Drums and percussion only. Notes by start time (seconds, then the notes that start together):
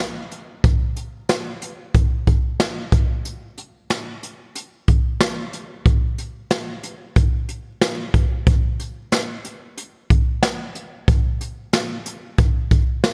0.31 closed hi-hat
0.64 kick, closed hi-hat
0.96 closed hi-hat
1.29 snare, closed hi-hat
1.62 closed hi-hat
1.94 kick, closed hi-hat
2.27 kick, closed hi-hat
2.60 snare, closed hi-hat
2.92 kick, closed hi-hat
3.25 closed hi-hat
3.58 closed hi-hat
3.90 snare, closed hi-hat
4.23 closed hi-hat
4.55 closed hi-hat
4.88 kick, closed hi-hat
5.21 snare, closed hi-hat
5.53 closed hi-hat
5.86 kick, closed hi-hat
6.18 closed hi-hat
6.50 snare, closed hi-hat
6.83 closed hi-hat
7.16 kick, closed hi-hat
7.49 closed hi-hat
7.81 snare, closed hi-hat
8.14 kick, closed hi-hat
8.47 kick, closed hi-hat
8.80 closed hi-hat
9.12 snare, closed hi-hat
9.45 closed hi-hat
9.77 closed hi-hat
10.10 kick, closed hi-hat
10.43 snare, closed hi-hat
10.75 closed hi-hat
11.08 kick, closed hi-hat
11.41 closed hi-hat
11.73 snare, closed hi-hat
12.06 closed hi-hat
12.38 kick, closed hi-hat
12.71 kick, closed hi-hat
13.04 snare, closed hi-hat